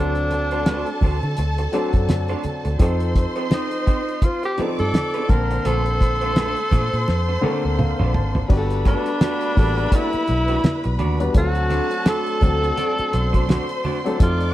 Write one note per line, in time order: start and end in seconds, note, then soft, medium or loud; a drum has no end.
0.00 0.83 D2 medium
0.00 1.10 F#3 medium
0.00 0.11 A3 medium
0.00 1.10 C4 medium
0.00 0.12 D4 medium
0.00 1.10 D4 medium
0.00 1.38 D4 medium
0.00 0.12 F#4 medium
0.00 1.11 A4 medium
0.00 2.76 A4 medium
0.00 0.12 C5 medium
0.00 2.76 A5 medium
0.15 muted clean electric guitar stroke soft
0.15 closed hi-hat soft
0.31 muted clean electric guitar stroke soft
0.31 closed hi-hat medium
0.31 muted conga soft
0.51 0.62 A3 soft
0.51 0.61 D4 soft
0.51 0.61 F#4 soft
0.51 0.61 C5 medium
0.51 closed hi-hat medium
0.66 0.89 A3 medium
0.66 0.88 D4 medium
0.66 0.87 F#4 medium
0.66 0.86 C5 medium
0.66 snare loud
0.66 closed hi-hat medium
0.66 high conga medium
0.86 muted clean electric guitar stroke soft
0.86 closed hi-hat soft
1.01 1.19 D2 medium
1.01 1.15 A3 medium
1.01 1.15 D4 medium
1.01 1.15 F#4 medium
1.01 1.16 C5 medium
1.01 kick medium
1.01 open hi-hat soft
1.01 low conga medium
1.23 1.35 D3 medium
1.23 muted clean electric guitar stroke medium
1.23 closed hi-hat soft
1.37 1.66 D2 medium
1.37 muted clean electric guitar stroke soft
1.37 closed hi-hat loud
1.37 muted conga soft
1.58 muted clean electric guitar stroke soft
1.58 closed hi-hat soft
1.72 2.60 F#3 medium
1.72 1.90 A3 medium
1.72 2.60 C4 medium
1.72 2.61 D4 medium
1.72 1.90 D4 medium
1.72 1.90 F#4 medium
1.72 2.61 A4 medium
1.72 1.90 C5 medium
1.72 closed hi-hat medium
1.93 2.34 F#2 medium
1.93 muted clean electric guitar stroke soft
1.93 kick medium
1.93 closed hi-hat soft
2.09 muted clean electric guitar stroke soft
2.09 snare loud
2.09 closed hi-hat medium
2.09 high conga medium
2.28 2.42 A3 medium
2.28 2.42 D4 medium
2.28 2.41 F#4 medium
2.28 2.41 C5 medium
2.28 closed hi-hat soft
2.43 muted clean electric guitar stroke soft
2.43 muted fingered electric bass stroke soft
2.43 closed hi-hat medium
2.43 high conga medium
2.65 2.77 D2 medium
2.65 muted clean electric guitar stroke soft
2.65 closed hi-hat medium
2.79 3.24 F2 loud
2.79 3.94 F3 medium
2.79 3.95 C4 medium
2.79 2.96 C4 medium
2.79 3.95 D#4 medium
2.79 2.96 D#4 medium
2.79 3.95 A4 medium
2.79 2.97 A4 medium
2.79 4.55 C5 medium
2.79 2.97 C5 loud
2.79 4.55 C6 medium
2.79 kick loud
2.79 closed hi-hat loud
2.79 muted conga medium
3.00 muted clean electric guitar stroke soft
3.00 closed hi-hat medium
3.15 muted clean electric guitar stroke soft
3.15 kick medium
3.15 closed hi-hat medium
3.15 muted conga soft
3.36 3.46 C4 medium
3.36 3.46 D#4 medium
3.36 3.46 A4 medium
3.36 3.45 C5 medium
3.36 closed hi-hat soft
3.51 3.67 C4 medium
3.51 3.67 D#4 medium
3.51 4.26 D#4 medium
3.51 3.68 A4 medium
3.51 3.68 C5 medium
3.51 snare loud
3.51 closed hi-hat medium
3.51 high conga medium
3.71 muted clean electric guitar stroke soft
3.71 closed hi-hat soft
3.86 3.99 C4 medium
3.86 4.00 D#4 medium
3.86 4.00 A4 medium
3.86 4.00 C5 medium
3.86 kick medium
3.86 closed hi-hat medium
4.07 muted clean electric guitar stroke soft
4.07 closed hi-hat soft
4.22 4.44 F4 medium
4.22 muted clean electric guitar stroke soft
4.22 kick medium
4.22 closed hi-hat loud
4.22 muted conga soft
4.43 4.61 G4 loud
4.43 muted clean electric guitar stroke soft
4.43 closed hi-hat medium
4.58 5.29 F3 medium
4.58 4.81 C4 medium
4.58 5.28 C4 medium
4.58 4.79 D#4 medium
4.58 5.30 D#4 medium
4.58 4.78 A4 medium
4.58 5.30 A4 medium
4.58 4.78 C5 medium
4.58 5.28 D5 medium
4.58 5.28 D6 medium
4.58 muted fingered electric bass stroke soft
4.58 closed hi-hat medium
4.58 muted conga soft
4.79 4.91 G2 medium
4.79 5.31 A4 loud
4.79 muted clean electric guitar stroke soft
4.79 closed hi-hat soft
4.94 muted clean electric guitar stroke soft
4.94 snare loud
4.94 closed hi-hat medium
4.94 high conga medium
5.14 5.30 C4 medium
5.14 5.30 D#4 medium
5.14 5.30 A4 medium
5.14 5.30 C5 medium
5.14 closed hi-hat soft
5.28 5.58 A#1 loud
5.28 6.44 D3 medium
5.28 6.44 A#3 medium
5.28 6.45 C4 medium
5.28 5.68 A#4 loud
5.28 8.46 C5 medium
5.28 6.45 A5 medium
5.28 8.46 C6 loud
5.28 muted clean electric guitar stroke soft
5.28 kick loud
5.28 closed hi-hat medium
5.28 high conga medium
5.51 muted clean electric guitar stroke soft
5.51 closed hi-hat medium
5.65 6.53 A#1 loud
5.65 5.81 A3 medium
5.65 5.81 D4 medium
5.65 5.82 F4 medium
5.65 7.79 A4 loud
5.65 5.82 C5 medium
5.65 closed hi-hat loud
5.65 muted conga medium
5.86 muted clean electric guitar stroke soft
5.86 closed hi-hat soft
6.01 muted clean electric guitar stroke soft
6.01 kick medium
6.01 closed hi-hat medium
6.01 muted conga soft
6.21 6.31 A3 soft
6.21 6.31 D4 medium
6.21 6.31 F4 medium
6.21 6.30 C5 medium
6.21 closed hi-hat medium
6.36 6.59 A3 medium
6.36 6.57 D4 medium
6.36 6.56 F4 medium
6.36 6.56 C5 medium
6.36 snare loud
6.36 closed hi-hat medium
6.36 high conga medium
6.56 muted clean electric guitar stroke soft
6.56 closed hi-hat soft
6.71 6.89 A#2 medium
6.71 6.84 A3 medium
6.71 6.85 D4 medium
6.71 6.85 F4 medium
6.71 6.85 C5 medium
6.71 kick medium
6.71 snare soft
6.71 closed hi-hat medium
6.71 low conga medium
6.92 7.05 A#2 medium
6.92 muted clean electric guitar stroke soft
6.92 closed hi-hat soft
7.08 7.36 F2 medium
7.08 muted clean electric guitar stroke soft
7.08 snare medium
7.08 muted conga soft
7.29 muted clean electric guitar stroke soft
7.41 8.30 D3 medium
7.41 7.66 A3 medium
7.41 8.30 A#3 medium
7.41 8.31 C4 medium
7.41 7.63 D4 medium
7.41 7.63 F4 medium
7.41 8.31 A4 loud
7.41 7.62 C5 medium
7.41 muted fingered electric bass stroke soft
7.41 high tom medium
7.63 7.92 D2 medium
7.63 muted clean electric guitar stroke soft
7.78 8.12 F5 medium
7.78 muted clean electric guitar stroke soft
7.78 mid tom medium
7.78 high conga medium
7.99 8.16 A#1 medium
7.99 8.12 A3 medium
7.99 8.12 D4 medium
7.99 8.11 F4 medium
7.99 8.11 C5 medium
7.99 mid tom medium
8.14 8.43 G#1 loud
8.14 8.47 A5 medium
8.14 muted clean electric guitar stroke soft
8.14 floor tom loud
8.14 high conga medium
8.35 muted clean electric guitar stroke soft
8.35 floor tom medium
8.48 8.94 G1 medium
8.48 9.37 G3 medium
8.48 9.37 B3 medium
8.48 9.37 D4 medium
8.48 9.38 F#4 medium
8.48 8.58 G4 medium
8.48 11.31 B4 medium
8.48 11.31 B5 loud
8.48 kick loud
8.48 crash loud
8.48 muted conga medium
8.57 9.41 A4 loud
8.70 closed hi-hat soft
8.85 9.08 A3 medium
8.85 9.08 D4 medium
8.85 9.96 D4 loud
8.85 9.08 F#4 medium
8.85 9.09 B4 medium
8.85 kick medium
8.85 closed hi-hat medium
8.85 muted conga soft
9.06 closed hi-hat medium
9.21 9.54 A3 medium
9.21 9.54 D4 medium
9.21 9.55 F#4 medium
9.21 9.55 B4 medium
9.21 snare loud
9.21 closed hi-hat medium
9.21 high conga medium
9.41 closed hi-hat soft
9.56 9.85 A1 medium
9.56 10.71 G3 medium
9.56 9.64 A#3 medium
9.56 10.72 D4 medium
9.56 10.72 F#4 medium
9.56 10.72 A4 medium
9.56 muted clean electric guitar stroke soft
9.56 kick medium
9.56 snare soft
9.56 open hi-hat soft
9.63 10.75 B3 medium
9.77 muted clean electric guitar stroke soft
9.77 closed hi-hat medium
9.92 10.08 A3 medium
9.92 10.09 D4 medium
9.92 11.01 E4 loud
9.92 10.09 F#4 medium
9.92 10.09 D5 medium
9.92 kick medium
9.92 closed hi-hat loud
9.92 muted conga soft
10.13 muted fingered electric bass stroke soft
10.13 closed hi-hat medium
10.27 10.57 B1 loud
10.27 muted clean electric guitar stroke soft
10.27 closed hi-hat medium
10.27 muted conga soft
10.48 10.59 A3 soft
10.48 10.58 D4 medium
10.48 10.58 F#4 medium
10.48 10.58 B4 medium
10.48 closed hi-hat soft
10.64 muted clean electric guitar stroke soft
10.64 snare loud
10.64 closed hi-hat medium
10.64 high conga medium
10.84 10.97 B1 medium
10.84 muted clean electric guitar stroke soft
10.84 closed hi-hat medium
10.99 11.28 D#2 medium
10.99 11.15 A3 medium
10.99 11.15 D4 medium
10.99 11.16 F#4 medium
10.99 11.16 D5 medium
10.99 closed hi-hat medium
10.99 high conga medium
11.19 11.32 G3 medium
11.19 11.32 B3 medium
11.19 11.32 D4 medium
11.19 11.32 F#4 medium
11.19 11.32 B4 medium
11.19 muted clean electric guitar stroke soft
11.19 closed hi-hat medium
11.34 11.79 D2 loud
11.34 11.42 F3 medium
11.34 12.22 A3 medium
11.34 12.22 C4 medium
11.34 12.23 D4 medium
11.34 12.10 F#4 loud
11.34 13.09 A4 medium
11.34 12.23 A4 medium
11.34 13.09 A5 loud
11.34 kick loud
11.34 closed hi-hat loud
11.34 muted conga medium
11.40 12.25 F#3 medium
11.55 closed hi-hat soft
11.70 11.86 A3 medium
11.70 11.87 D4 medium
11.70 11.87 F#4 medium
11.70 11.87 C5 medium
11.70 closed hi-hat medium
11.70 muted conga soft
11.91 closed hi-hat medium
12.05 12.39 A3 medium
12.05 12.39 D4 medium
12.05 12.40 F#4 medium
12.05 13.86 A4 loud
12.05 12.40 C5 medium
12.05 snare loud
12.05 closed hi-hat loud
12.05 high conga medium
12.26 closed hi-hat soft
12.41 12.71 D2 loud
12.41 13.56 F#3 medium
12.41 13.57 A3 medium
12.41 13.57 C4 medium
12.41 13.57 D4 medium
12.41 13.57 A4 medium
12.41 muted clean electric guitar stroke soft
12.41 kick medium
12.41 closed hi-hat medium
12.41 low conga medium
12.62 muted clean electric guitar stroke soft
12.62 closed hi-hat medium
12.77 12.93 A3 medium
12.77 12.93 D4 medium
12.77 12.94 F#4 medium
12.77 12.94 D5 medium
12.77 closed hi-hat loud
12.77 muted conga soft
12.98 muted fingered electric bass stroke soft
12.98 closed hi-hat medium
13.13 13.58 B1 loud
13.13 14.18 C5 medium
13.13 14.18 C6 medium
13.13 muted clean electric guitar stroke soft
13.13 closed hi-hat medium
13.13 muted conga soft
13.33 13.43 A3 soft
13.33 13.43 D4 soft
13.33 13.43 F#4 medium
13.33 13.43 C5 medium
13.33 kick medium
13.33 closed hi-hat soft
13.48 13.65 A3 medium
13.48 13.65 D4 medium
13.48 13.65 F#4 medium
13.48 13.66 C5 medium
13.48 snare loud
13.48 closed hi-hat medium
13.48 high conga medium
13.69 muted clean electric guitar stroke soft
13.69 closed hi-hat medium
13.84 13.97 A3 medium
13.84 13.97 D4 medium
13.84 13.97 F#4 medium
13.84 13.98 D5 medium
13.84 open hi-hat soft
13.84 high conga medium
14.04 14.17 F#3 medium
14.04 14.17 A3 medium
14.04 14.17 C4 medium
14.04 14.17 D4 medium
14.04 14.18 A4 medium
14.04 muted clean electric guitar stroke soft
14.04 closed hi-hat medium
14.19 14.54 F2 loud
14.19 14.54 F3 medium
14.19 14.54 A3 medium
14.19 14.54 C4 medium
14.19 14.54 D#4 medium
14.19 14.54 F4 loud
14.19 14.54 A4 medium
14.19 14.54 D5 medium
14.19 14.54 D6 loud
14.19 kick loud
14.19 closed hi-hat loud
14.19 muted conga medium
14.41 closed hi-hat medium